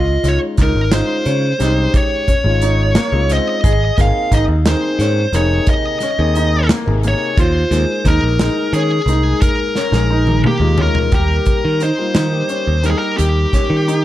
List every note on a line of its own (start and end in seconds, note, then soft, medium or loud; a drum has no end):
0.00 0.16 C#2 medium
0.00 0.37 F4 medium
0.00 0.28 D#5 medium
0.23 0.37 C#2 medium
0.23 0.76 G#3 medium
0.23 0.76 C#4 medium
0.23 0.76 D#4 medium
0.23 0.77 F4 medium
0.23 snare soft
0.23 closed hi-hat medium
0.28 0.37 C#5 medium
0.57 0.71 C#2 medium
0.57 0.82 D#4 medium
0.57 kick medium
0.57 snare soft
0.57 closed hi-hat medium
0.62 0.93 A#4 medium
0.75 1.01 G#1 medium
0.91 1.44 G#3 medium
0.91 1.44 C#4 medium
0.91 1.44 D#4 medium
0.91 1.15 D#4 medium
0.91 1.44 F4 medium
0.91 1.97 C5 medium
0.91 snare loud
0.91 closed hi-hat medium
1.25 1.52 C#3 medium
1.25 1.49 C#4 medium
1.25 closed hi-hat soft
1.58 1.86 C2 medium
1.58 2.24 G#3 medium
1.58 2.25 C#4 medium
1.58 2.25 D#4 medium
1.58 2.06 D#4 medium
1.58 2.25 G4 medium
1.58 snare soft
1.58 closed hi-hat medium
1.94 3.32 C#5 medium
1.94 kick loud
1.94 closed hi-hat medium
2.28 2.51 C#4 medium
2.28 kick medium
2.28 closed hi-hat medium
2.44 2.96 G#1 medium
2.44 2.96 G#3 medium
2.44 2.97 C#4 medium
2.44 2.97 D#4 medium
2.44 2.97 F4 medium
2.62 2.85 D#4 medium
2.62 closed hi-hat medium
2.95 3.19 A#3 medium
2.95 snare loud
2.95 closed hi-hat medium
3.12 3.38 C#2 medium
3.12 3.63 G#3 medium
3.12 3.63 C#4 medium
3.12 3.64 D#4 medium
3.12 3.64 F4 medium
3.29 3.54 C4 medium
3.29 4.01 D#5 medium
3.29 snare soft
3.29 closed hi-hat medium
3.64 3.90 G#1 medium
3.64 4.10 G#4 medium
3.64 kick medium
3.64 closed hi-hat medium
3.98 4.11 G#1 medium
3.98 4.50 A#3 medium
3.98 4.50 C4 medium
3.98 4.50 D#4 medium
3.98 4.50 G#4 medium
3.98 4.34 F5 medium
3.98 kick medium
3.98 snare soft
3.98 closed hi-hat medium
4.31 4.44 G#1 medium
4.31 4.55 D#4 medium
4.31 4.42 D#5 medium
4.31 kick medium
4.31 closed hi-hat medium
4.48 4.74 D#2 medium
4.65 5.17 A#3 medium
4.65 5.17 C4 medium
4.65 5.18 D#4 medium
4.65 4.89 D#4 medium
4.65 5.18 G#4 medium
4.65 5.36 C5 medium
4.65 snare loud
4.65 closed hi-hat medium
4.99 5.25 G#2 medium
4.99 5.23 C#4 medium
4.99 snare soft
4.99 closed hi-hat medium
5.33 5.59 F1 medium
5.33 5.99 C3 medium
5.33 5.98 A#3 medium
5.33 5.99 D#4 medium
5.33 5.80 D#4 medium
5.33 5.99 G#4 medium
5.33 5.70 C#5 medium
5.33 snare soft
5.33 closed hi-hat medium
5.67 6.67 D#5 medium
5.67 kick medium
5.67 closed hi-hat medium
6.00 6.25 C#4 medium
6.00 snare soft
6.00 closed hi-hat medium
6.19 6.70 D#2 medium
6.19 6.71 A#3 medium
6.19 6.71 C4 medium
6.19 6.71 D#4 medium
6.19 6.71 G#4 medium
6.35 6.59 D#4 medium
6.35 closed hi-hat medium
6.69 6.93 A#3 medium
6.69 snare loud
6.69 closed hi-hat medium
6.86 7.13 G#1 medium
6.86 7.37 C3 medium
6.86 7.37 A#3 medium
6.86 7.38 D#4 medium
6.86 7.38 G#4 medium
7.03 7.27 A#3 medium
7.03 closed hi-hat medium
7.08 7.40 C#5 medium
7.37 7.63 D#2 medium
7.37 7.84 F4 medium
7.37 8.09 C5 loud
7.37 kick medium
7.37 closed hi-hat medium
7.70 7.84 D#2 medium
7.70 8.23 G#3 medium
7.70 8.23 A#3 medium
7.70 8.23 D#4 medium
7.70 8.24 G#4 medium
7.70 snare soft
7.70 closed hi-hat medium
8.05 8.18 D#2 medium
8.05 8.29 D#4 medium
8.05 8.74 A#4 medium
8.05 kick medium
8.05 closed hi-hat medium
8.22 8.48 A#1 medium
8.39 8.92 G#3 medium
8.39 8.92 A#3 medium
8.39 8.92 D#4 medium
8.39 8.63 D#4 medium
8.39 8.92 G#4 medium
8.39 snare loud
8.39 closed hi-hat medium
8.73 8.99 D#3 medium
8.73 8.98 C#4 medium
8.73 9.41 G#4 medium
8.73 closed hi-hat medium
9.06 9.33 C2 medium
9.06 9.73 G#3 medium
9.06 9.73 A#3 medium
9.06 9.73 D#4 medium
9.06 9.54 D#4 medium
9.06 9.74 G#4 medium
9.06 closed hi-hat medium
9.41 10.40 A#4 medium
9.41 kick medium
9.41 closed hi-hat medium
9.75 9.99 C#4 medium
9.75 snare soft
9.92 10.44 A#1 medium
9.92 10.45 G#3 medium
9.92 10.45 A#3 medium
9.92 10.45 D#4 medium
9.92 10.46 G#4 medium
9.92 snare medium
10.11 10.33 D#4 medium
10.27 high tom medium
10.44 10.68 A#3 medium
10.44 10.78 G4 medium
10.44 mid tom medium
10.60 10.86 D#2 medium
10.60 11.12 G#3 medium
10.60 11.11 A#3 medium
10.60 11.12 D#4 medium
10.60 11.13 F4 medium
10.78 11.02 C#4 medium
10.78 floor tom medium
10.82 11.14 A#4 medium
10.95 floor tom medium
11.12 11.38 D#2 medium
11.12 11.78 G3 medium
11.12 11.78 A#3 medium
11.12 11.79 D#4 medium
11.12 11.59 G4 medium
11.12 11.79 G4 medium
11.12 11.84 A#4 medium
11.12 kick loud
11.12 closed hi-hat medium
11.46 kick medium
11.46 closed hi-hat medium
11.65 11.90 D#3 medium
11.80 12.04 D#4 medium
11.80 12.88 C5 medium
11.80 closed hi-hat soft
11.98 12.25 G3 medium
11.98 12.25 A#3 medium
11.98 12.25 D#4 medium
11.98 12.25 F4 medium
12.15 12.41 D#3 medium
12.15 12.38 D#4 medium
12.15 snare medium
12.15 closed hi-hat medium
12.32 12.72 G3 medium
12.32 12.72 A#3 medium
12.32 12.72 D#4 medium
12.32 12.72 G4 medium
12.49 12.73 C#4 medium
12.49 closed hi-hat soft
12.67 12.93 D#2 medium
12.83 13.88 G3 medium
12.83 13.89 A#3 medium
12.83 13.30 D#4 medium
12.83 13.89 D#4 medium
12.83 13.89 G4 medium
12.83 12.88 A#4 medium
12.83 closed hi-hat medium
12.91 12.98 G#4 medium
12.99 13.17 A#4 medium
13.18 13.45 D#2 medium
13.18 14.05 G4 medium
13.18 closed hi-hat medium
13.53 13.76 C#4 medium
13.53 kick medium
13.53 snare soft
13.53 closed hi-hat soft
13.70 14.05 D#3 medium
13.88 14.05 D#4 medium
13.88 closed hi-hat medium